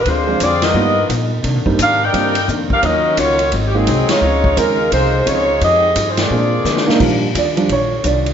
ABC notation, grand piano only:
X:1
M:4/4
L:1/8
Q:"Swing" 1/4=173
K:Eb
V:1 name="Grand piano"
z [F,A,CDF] z2 [G,^A,=B,^DF] z3 | z [G,B,CDE] z2 [G,B,CDF] z3 | [_G,B,_DEf]3 z2 [A,B,CEF] z2 | z2 [A,C_DEF] z4 z |
z4 [B,CDFA]3 [B,DEFB] | z2 d2 _d2 =d z |]
V:2 name="Grand piano" clef=bass
z8 | z8 | z8 | z8 |
z8 | [F,G,D] z2 [F,G,D] z4 |]